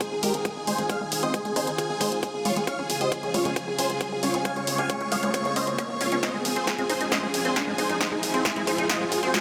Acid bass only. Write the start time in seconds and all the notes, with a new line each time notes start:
0.23 G#3
0.45 G#3
0.67 G#3
0.78 G#3
0.90 G#3
1.01 G#3
1.23 C4
1.34 G#3
1.45 G#3
1.56 D#4
1.67 D#4
2.01 G#3
2.23 G#3
2.45 G#3
2.56 G#3
2.67 C#4
2.79 C#4
3.01 G4
3.12 C#4
3.23 C#4
3.34 G#3
3.45 G#3
3.79 C#4
4.01 C#4
4.23 C#4
4.34 C#4
4.45 C#4
4.56 C#4
4.79 G4
4.90 C#4
5.01 C#4
5.12 G#3
5.23 G#3
5.56 C#4
5.78 C#4
6.01 C#4
6.12 C#4
6.23 G#3
6.34 G#3
6.56 C4
6.67 G#3
6.78 G#3
6.89 D#4
7.01 D#4
7.12 G#3
7.23 G#3
7.45 C4
7.56 G#3
7.67 G#3
7.78 D#4
7.89 D#4
8.00 G#3
8.12 G#3
8.34 C4
8.45 G#3
8.56 G#3
8.67 D#4
8.78 D#4
8.89 G#3
9.00 G#3
9.23 C4
9.34 G#3